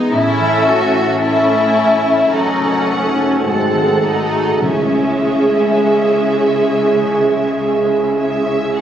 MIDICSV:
0, 0, Header, 1, 9, 480
1, 0, Start_track
1, 0, Key_signature, 4, "minor"
1, 0, Tempo, 1107011
1, 49, Time_signature, 4, 2, 24, 8
1, 1489, Tempo, 1183432
1, 3669, End_track
2, 0, Start_track
2, 0, Title_t, "Violin section"
2, 0, Program_c, 0, 48
2, 47, Note_on_c, 0, 76, 64
2, 509, Note_off_c, 0, 76, 0
2, 530, Note_on_c, 0, 76, 62
2, 995, Note_off_c, 0, 76, 0
2, 1007, Note_on_c, 0, 78, 58
2, 1487, Note_off_c, 0, 78, 0
2, 1492, Note_on_c, 0, 78, 45
2, 1962, Note_off_c, 0, 78, 0
2, 1974, Note_on_c, 0, 76, 48
2, 3405, Note_off_c, 0, 76, 0
2, 3410, Note_on_c, 0, 76, 51
2, 3633, Note_off_c, 0, 76, 0
2, 3648, Note_on_c, 0, 78, 65
2, 3669, Note_off_c, 0, 78, 0
2, 3669, End_track
3, 0, Start_track
3, 0, Title_t, "Viola section"
3, 0, Program_c, 1, 48
3, 48, Note_on_c, 1, 61, 64
3, 48, Note_on_c, 1, 69, 61
3, 509, Note_off_c, 1, 69, 0
3, 510, Note_off_c, 1, 61, 0
3, 525, Note_on_c, 1, 61, 54
3, 525, Note_on_c, 1, 69, 59
3, 993, Note_off_c, 1, 61, 0
3, 993, Note_off_c, 1, 69, 0
3, 1001, Note_on_c, 1, 61, 54
3, 1001, Note_on_c, 1, 69, 51
3, 1478, Note_off_c, 1, 61, 0
3, 1479, Note_off_c, 1, 69, 0
3, 1489, Note_on_c, 1, 69, 55
3, 1490, Note_on_c, 1, 56, 50
3, 1960, Note_off_c, 1, 69, 0
3, 1964, Note_off_c, 1, 56, 0
3, 1969, Note_on_c, 1, 56, 53
3, 1970, Note_on_c, 1, 68, 51
3, 3669, Note_off_c, 1, 56, 0
3, 3669, Note_off_c, 1, 68, 0
3, 3669, End_track
4, 0, Start_track
4, 0, Title_t, "Harp"
4, 0, Program_c, 2, 46
4, 0, Note_on_c, 2, 52, 62
4, 0, Note_on_c, 2, 59, 50
4, 0, Note_on_c, 2, 64, 46
4, 0, Note_on_c, 2, 68, 49
4, 0, Note_on_c, 2, 71, 49
4, 0, Note_on_c, 2, 76, 55
4, 49, Note_on_c, 2, 45, 64
4, 67, Note_off_c, 2, 59, 0
4, 67, Note_off_c, 2, 71, 0
4, 68, Note_off_c, 2, 52, 0
4, 69, Note_off_c, 2, 68, 0
4, 170, Note_on_c, 2, 52, 46
4, 289, Note_on_c, 2, 61, 47
4, 405, Note_off_c, 2, 64, 0
4, 410, Note_on_c, 2, 64, 41
4, 527, Note_on_c, 2, 69, 43
4, 650, Note_on_c, 2, 73, 43
4, 761, Note_off_c, 2, 69, 0
4, 767, Note_on_c, 2, 69, 46
4, 879, Note_off_c, 2, 64, 0
4, 884, Note_on_c, 2, 64, 35
4, 1004, Note_on_c, 2, 42, 50
4, 1021, Note_off_c, 2, 76, 0
4, 1022, Note_off_c, 2, 45, 0
4, 1023, Note_off_c, 2, 52, 0
4, 1023, Note_off_c, 2, 64, 0
4, 1125, Note_on_c, 2, 49, 41
4, 1247, Note_on_c, 2, 63, 40
4, 1371, Note_on_c, 2, 66, 48
4, 1491, Note_on_c, 2, 44, 49
4, 1508, Note_off_c, 2, 42, 0
4, 1508, Note_off_c, 2, 61, 0
4, 1509, Note_off_c, 2, 49, 0
4, 1510, Note_off_c, 2, 73, 0
4, 1610, Note_on_c, 2, 51, 41
4, 1722, Note_off_c, 2, 63, 0
4, 1727, Note_on_c, 2, 63, 32
4, 1844, Note_off_c, 2, 66, 0
4, 1849, Note_on_c, 2, 66, 38
4, 1972, Note_on_c, 2, 49, 46
4, 1990, Note_off_c, 2, 44, 0
4, 1990, Note_off_c, 2, 63, 0
4, 1990, Note_off_c, 2, 69, 0
4, 1991, Note_off_c, 2, 66, 0
4, 1992, Note_off_c, 2, 51, 0
4, 2095, Note_on_c, 2, 56, 36
4, 2218, Note_on_c, 2, 61, 38
4, 2340, Note_on_c, 2, 64, 35
4, 2462, Note_on_c, 2, 68, 37
4, 2582, Note_on_c, 2, 73, 38
4, 2695, Note_off_c, 2, 68, 0
4, 2700, Note_on_c, 2, 68, 37
4, 2815, Note_off_c, 2, 64, 0
4, 2820, Note_on_c, 2, 64, 33
4, 2935, Note_off_c, 2, 49, 0
4, 2940, Note_on_c, 2, 49, 44
4, 3052, Note_off_c, 2, 56, 0
4, 3057, Note_on_c, 2, 56, 38
4, 3170, Note_off_c, 2, 61, 0
4, 3175, Note_on_c, 2, 61, 36
4, 3286, Note_off_c, 2, 64, 0
4, 3291, Note_on_c, 2, 64, 38
4, 3407, Note_off_c, 2, 68, 0
4, 3412, Note_on_c, 2, 68, 38
4, 3525, Note_off_c, 2, 73, 0
4, 3530, Note_on_c, 2, 73, 39
4, 3645, Note_off_c, 2, 68, 0
4, 3650, Note_on_c, 2, 68, 38
4, 3669, Note_off_c, 2, 49, 0
4, 3669, Note_off_c, 2, 56, 0
4, 3669, Note_off_c, 2, 61, 0
4, 3669, Note_off_c, 2, 64, 0
4, 3669, Note_off_c, 2, 68, 0
4, 3669, Note_off_c, 2, 73, 0
4, 3669, End_track
5, 0, Start_track
5, 0, Title_t, "Violin section"
5, 0, Program_c, 3, 48
5, 0, Note_on_c, 3, 63, 68
5, 49, Note_off_c, 3, 63, 0
5, 52, Note_on_c, 3, 64, 81
5, 289, Note_on_c, 3, 66, 77
5, 290, Note_off_c, 3, 64, 0
5, 527, Note_off_c, 3, 66, 0
5, 527, Note_on_c, 3, 64, 78
5, 994, Note_off_c, 3, 64, 0
5, 1005, Note_on_c, 3, 63, 70
5, 1245, Note_off_c, 3, 63, 0
5, 1247, Note_on_c, 3, 61, 64
5, 1490, Note_off_c, 3, 61, 0
5, 1494, Note_on_c, 3, 60, 59
5, 1725, Note_on_c, 3, 63, 71
5, 1727, Note_off_c, 3, 60, 0
5, 1970, Note_off_c, 3, 63, 0
5, 1971, Note_on_c, 3, 61, 62
5, 3634, Note_off_c, 3, 61, 0
5, 3669, End_track
6, 0, Start_track
6, 0, Title_t, "French horn section"
6, 0, Program_c, 4, 60
6, 49, Note_on_c, 4, 57, 60
6, 52, Note_on_c, 4, 61, 64
6, 1474, Note_off_c, 4, 61, 0
6, 1491, Note_on_c, 4, 66, 53
6, 1970, Note_off_c, 4, 66, 0
6, 1971, Note_on_c, 4, 64, 44
6, 2456, Note_on_c, 4, 56, 45
6, 2459, Note_off_c, 4, 57, 0
6, 3669, Note_off_c, 4, 56, 0
6, 3669, Note_off_c, 4, 64, 0
6, 3669, End_track
7, 0, Start_track
7, 0, Title_t, "Timpani"
7, 0, Program_c, 5, 47
7, 1970, Note_on_c, 5, 49, 62
7, 2683, Note_off_c, 5, 49, 0
7, 3669, End_track
8, 0, Start_track
8, 0, Title_t, "Cello section"
8, 0, Program_c, 6, 48
8, 48, Note_on_c, 6, 45, 66
8, 986, Note_off_c, 6, 45, 0
8, 1005, Note_on_c, 6, 42, 53
8, 1489, Note_on_c, 6, 44, 58
8, 1490, Note_off_c, 6, 42, 0
8, 1967, Note_on_c, 6, 49, 54
8, 1970, Note_off_c, 6, 44, 0
8, 3669, Note_off_c, 6, 49, 0
8, 3669, End_track
9, 0, Start_track
9, 0, Title_t, "Double bass section"
9, 0, Program_c, 7, 48
9, 49, Note_on_c, 7, 33, 58
9, 986, Note_off_c, 7, 33, 0
9, 1004, Note_on_c, 7, 30, 53
9, 1490, Note_off_c, 7, 30, 0
9, 1490, Note_on_c, 7, 32, 53
9, 1970, Note_off_c, 7, 32, 0
9, 1971, Note_on_c, 7, 37, 43
9, 3669, Note_off_c, 7, 37, 0
9, 3669, End_track
0, 0, End_of_file